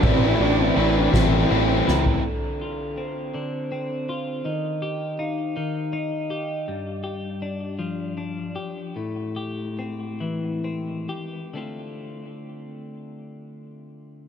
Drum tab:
RD |x-x-x-x-x---|------------|------------|------------|
SD |------o---o-|------------|------------|------------|
FT |-----------o|------------|------------|------------|
BD |o-----o-----|------------|------------|------------|

RD |------------|------------|
SD |------------|------------|
FT |------------|------------|
BD |------------|------------|